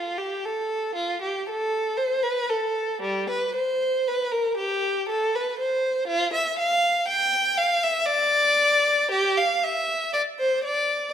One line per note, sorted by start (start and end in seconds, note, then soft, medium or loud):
0.00 0.20 F4 medium
0.18 0.44 G4 medium
0.45 0.97 A4 medium
0.96 1.21 F4 medium
1.22 1.47 G4 medium
1.49 1.98 A4 medium
1.97 2.24 C5 medium
2.23 2.50 B4 medium
2.50 3.03 A4 medium
3.02 3.29 G3 medium
3.30 3.55 B4 medium
3.55 4.05 C5 medium
4.08 4.33 B4 medium
4.32 4.57 A#4 medium
4.57 5.07 G4 medium
5.09 5.33 A4 medium
5.35 5.59 B4 medium
5.59 6.08 C5 medium
6.08 6.32 F4 loud
6.34 6.58 E5 medium
6.59 7.08 F5 medium
7.08 7.57 G5 loud
7.58 7.82 F5 medium
7.84 8.08 E5 medium
8.06 9.10 D5 loud
9.12 9.37 G4 loud
9.38 9.63 F5 medium
9.64 10.14 E5 medium
10.13 10.21 D5 medium
10.40 10.64 C5 medium
10.64 11.13 D5 medium